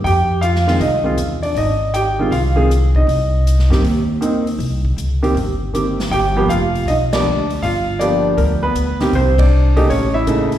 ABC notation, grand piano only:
X:1
M:4/4
L:1/8
Q:"Swing" 1/4=159
K:Cm
V:1 name="Grand piano"
[Gg]2 [Ff]2 [Ee]2 z [Dd] | [Ee]2 [Gg]2 [Ff]2 z [Ee]- | [Ee]3 z4 z | z8 |
[Gg]2 [Ff]2 [Ee] [Dd]2 z | [Ff]2 [Dd]2 [^A,^A] [=B,=B]3 | [Cc] [Dd]2 [Ee] [^C^c] [=E=e]3 |]
V:2 name="Grand piano"
z3 [E,A,CF] z [E,A,CF] z2 | z3 [E,A,CF] z [E,A,CA] z2 | z3 [E,B,CG] z2 [E,B,CE] z | z3 [E,B,CG] z2 [E,B,CG] z |
z [F,^A,=B,G] z3 [F,A,B,G] z2 | z2 [F,^A,=B,G]3 z2 [E,A,CG] | z3 [_D,=A,B,G] z2 [^C,A,B,E] z |]